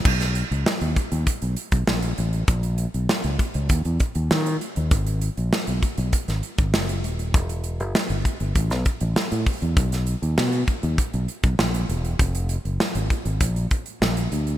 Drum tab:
CC |x---------------|----------------|----------------|----------------|
HH |-xxx-xxxxxxx-xxx|xxxx-xxxxxxx-xxx|xxxx-xxxxxxx-xxx|xxxx-xxxxxxx-xox|
SD |-o--o-------o---|----o-------o---|----o----o--o---|----o----o--o---|
BD |o-----o-o--o----|o-----o-o-o-----|o-----o-o--o----|o-----o-o-o---o-|

CC |----------------|----------------|
HH |xxxx-xxxxxxx-xxx|xxxx-xxxxxxx-xxx|
SD |-o--o-------o---|----o-------o---|
BD |o-----o-o--o----|o-----o-o-o-----|